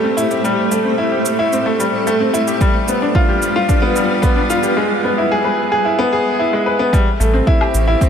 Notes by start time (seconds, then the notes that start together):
Already playing: G3 A3 C4 E4 G4 C5
0.03 C4
0.17 A1 E4, shaker
0.31 G4, shaker
0.44 G3 A4, shaker
0.71 A1 A3, shaker
0.85 C4
0.98 E4
1.12 G4
1.25 A1, shaker
1.39 E4
1.52 C4, shaker
1.66 A3
1.80 A2 G3, shaker
1.93 A2
2.07 A3, shaker
2.20 C4
2.34 A1 E4, shaker
2.48 G4, shaker
2.61 G3 F4 B4, kick, shaker
2.88 B3, shaker
3.02 D4
3.15 F4, kick
3.29 G4
3.42 shaker
3.56 F4
3.69 D4, kick, shaker
3.82 B3
3.96 G2 G3, shaker
4.10 G2
4.22 B3, kick, shaker
4.36 D4
4.50 F4, shaker
4.63 G4, shaker
4.77 G#3
5.04 B3
5.18 E4
5.32 G#4
5.45 B4
5.72 G#4
5.85 E4
5.99 B3
6.13 G#4
6.39 E4
6.53 G#3
6.66 B4
6.79 B3
6.93 G3 A3 G4 C5, kick, shaker
7.20 A1 A3, shaker
7.33 C4
7.47 E4, kick
7.61 G4, low woodblock
7.74 A1, shaker
7.88 E4
8.01 C4, kick, shaker